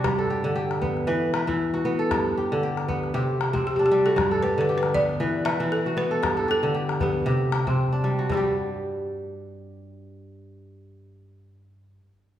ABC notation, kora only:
X:1
M:4/4
L:1/16
Q:"Swing 16ths" 1/4=116
K:G
V:1 name="Kora"
F A G2 G3 z B2 B E2 F2 A- | A z G2 G3 z G3 C2 D2 F- | F A G2 G3 z B2 B E2 F2 A- | A A G2 G3 z G2 G C2 D2 F- |
F z12 z3 | z16 |]
V:2 name="Kora" clef=bass
G,,2 z D,2 z B,2 E,2 z E,2 z B,2 | G,,2 z D,2 z B,2 C,2 z C,2 z G,2 | G,,2 z D,2 z B,2 E,2 z E,2 z B,2 | G,,2 z D,2 z B,2 C,2 z C,2 z G,2 |
[G,,G,G]16- | [G,,G,G]16 |]